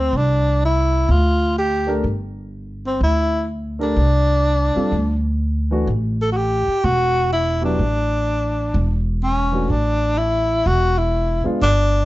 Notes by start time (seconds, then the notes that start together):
Already playing: C4
0.13 C2 D4
0.65 E4
1.09 D2 F4
1.58 G4
1.87 A3 D4 G4 A#4
2.04 G1
2.87 C4
3.01 D2 E4
3.79 A3 D4 G4 A#4
3.96 C2
4.75 G3 C4 F4 A4, muted upright bass stroke
4.92 D2
5.71 E3 A3 D4 F#4
5.87 A1
6.22 A4
6.33 F#4
6.37 G4
6.67 muted upright bass stroke
6.84 E1 F#4
7.33 E4
7.62 F#3 B3 D4 E4 G4
7.79 A1
8.74 E1
9.23 C#4
9.52 E3 A3 D4 F#4
9.69 A1 D4
10.18 E4
10.66 E1 F#4
10.98 E4
11.44 G#3 B3 D4 F4, muted upright bass stroke
11.62 G1 D4